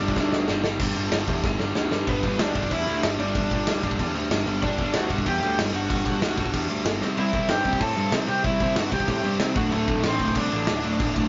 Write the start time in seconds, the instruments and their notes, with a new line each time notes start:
Already playing: lead electric guitar D4 D5
0.00 picked electric bass G1, overdriven electric guitar G2 D3 G3, crash
0.08 kick
0.16 picked electric bass D2, overdriven electric guitar G2 D3 G3, kick, snare
0.32 snare
0.48 picked electric bass G1, overdriven electric guitar G2 D3 G3, snare
0.64 overdriven electric guitar G2 D3 G3, snare
0.79 picked electric bass G1, overdriven electric guitar G2 D3 G3, kick, crash
0.96 picked electric bass G1, overdriven electric guitar G2 D3 G3, crash
1.12 picked electric bass G1, overdriven electric guitar G2 D3 G3, snare, crash
1.28 picked electric bass E2, overdriven electric guitar G2 D3 G3, kick, crash
1.44 picked electric bass G1, overdriven electric guitar G2 D3 G3, kick, snare
1.59 picked electric bass G1, overdriven electric guitar G2 D3 G3, snare
1.75 picked electric bass D2, overdriven electric guitar G2 D3 G3, snare
1.91 picked electric bass G2, overdriven electric guitar G2 D3 G3, snare
2.07 picked electric bass G1, overdriven electric guitar G2 D3 G3, lead electric guitar B3 B4, kick, crash
2.23 picked electric bass G1, overdriven electric guitar G2 D3 G3, kick, crash
2.39 picked electric bass D2, overdriven electric guitar G2 D3 G3, lead electric guitar D4 D5, snare, crash
2.55 picked electric bass G1, overdriven electric guitar G2 D3 G3, kick, crash
2.63 kick
2.71 picked electric bass E2, overdriven electric guitar G2 D3 G3, lead electric guitar E4 E5, kick, crash
2.87 picked electric bass D2, overdriven electric guitar G2 D3 G3, crash
3.03 picked electric bass G1, overdriven electric guitar G2 D3 G3, snare, crash
3.19 picked electric bass G1, overdriven electric guitar G2 D3 G3, lead electric guitar D4 D5, crash
3.35 picked electric bass G1, overdriven electric guitar G2 D3 G3, kick, crash
3.51 picked electric bass G1, overdriven electric guitar G2 D3 G3, kick, crash
3.67 picked electric bass D2, overdriven electric guitar G2 D3 G3, snare, crash
3.83 picked electric bass G1, overdriven electric guitar G2 D3 G3, kick, crash
3.91 kick
3.99 picked electric bass E2, overdriven electric guitar G2 D3 G3, kick, crash
4.15 picked electric bass D2, overdriven electric guitar G2 D3 G3, crash
4.31 picked electric bass G1, overdriven electric guitar G2 D3 G3, snare, crash
4.47 picked electric bass G1, overdriven electric guitar G2 D3 G3, crash
4.62 picked electric bass G1, overdriven electric guitar G2 D3 G3, lead electric guitar D4 D5, kick, crash
4.78 picked electric bass G1, overdriven electric guitar G2 D3 G3, kick, crash
4.94 picked electric bass D2, overdriven electric guitar G2 D3 G3, lead electric guitar F#4 F#5, snare, crash
5.10 picked electric bass G1, overdriven electric guitar G2 D3 G3, kick, crash
5.18 kick
5.26 picked electric bass E2, overdriven electric guitar G2 D3 G3, lead electric guitar G4 G5, kick, crash
5.42 picked electric bass D2, overdriven electric guitar G2 D3 G3, crash
5.58 picked electric bass G1, overdriven electric guitar G2 D3 G3, snare, crash
5.73 picked electric bass G1, overdriven electric guitar G2 D3 G3, lead electric guitar F#4 F#5, crash
5.88 picked electric bass G1, overdriven electric guitar G2 D3 G3, kick, crash
6.05 picked electric bass G1, overdriven electric guitar G2 D3 G3, kick, crash
6.21 picked electric bass D2, overdriven electric guitar G2 D3 G3, snare, crash
6.37 picked electric bass G1, overdriven electric guitar G2 D3 G3, kick, crash
6.46 kick
6.54 picked electric bass E2, overdriven electric guitar G2 D3 G3, kick, crash
6.69 picked electric bass D2, overdriven electric guitar G2 D3 G3, crash
6.85 picked electric bass G1, overdriven electric guitar G2 D3 G3, snare, crash
7.01 picked electric bass C2, overdriven electric guitar C3 G3 C4, snare
7.17 picked electric bass C2, overdriven electric guitar C3 G3 C4, lead electric guitar E4 E5, crash
7.33 picked electric bass C2, overdriven electric guitar C3 G3 C4, kick, crash
7.49 picked electric bass G2, overdriven electric guitar C3 G3 C4, lead electric guitar G4 G5, snare, crash
7.65 picked electric bass C2, overdriven electric guitar C3 G3 C4, kick, crash
7.73 kick
7.80 picked electric bass A2, overdriven electric guitar C3 G3 C4, lead electric guitar A4 A5, kick, crash
7.97 picked electric bass G2, overdriven electric guitar C3 G3 C4, crash
8.12 picked electric bass C2, overdriven electric guitar C3 G3 C4, snare, crash
8.28 picked electric bass C2, overdriven electric guitar C3 G3 C4, lead electric guitar G4 G5, crash
8.44 picked electric bass C2, overdriven electric guitar C3 G3 C4, lead electric guitar E4 E5, kick, crash
8.60 picked electric bass C2, overdriven electric guitar C3 G3 C4, kick, crash
8.76 picked electric bass G2, overdriven electric guitar C3 G3 C4, lead electric guitar F#4 F#5, snare, crash
8.92 picked electric bass C2, overdriven electric guitar C3 G3 C4, lead electric guitar G4 G5, kick, crash
9.00 kick
9.08 picked electric bass A2, overdriven electric guitar C3 G3 C4, kick, crash
9.24 picked electric bass G2, overdriven electric guitar C3 G3 C4, crash
9.40 picked electric bass C2, overdriven electric guitar C3 G3 C4, snare, crash
9.55 picked electric bass D1, overdriven electric guitar D2 A2 D3, lead electric guitar F#4 F#5, kick, crash
9.72 picked electric bass D1, overdriven electric guitar D2 A2 D3, lead electric guitar A3 A4, crash
9.87 picked electric bass D1, overdriven electric guitar D2 A2 D3, kick, crash
10.03 picked electric bass A1, overdriven electric guitar D2 A2 D3, lead electric guitar C4 C5, snare, crash
10.19 picked electric bass D1, overdriven electric guitar D2 A2 D3, kick, crash
10.28 kick
10.35 picked electric bass C2, overdriven electric guitar D2 A2 D3, lead electric guitar D4, kick, crash
10.39 lead electric guitar D5
10.52 picked electric bass A1, overdriven electric guitar D2 A2 D3, crash
10.67 picked electric bass D1, overdriven electric guitar D2 A2 D3, snare, crash
10.82 picked electric bass D1, overdriven electric guitar D2 A2 D3, crash
10.99 picked electric bass D1, overdriven electric guitar D2 A2 D3, kick, crash
11.14 picked electric bass D1, overdriven electric guitar D2 A2 D3, kick, crash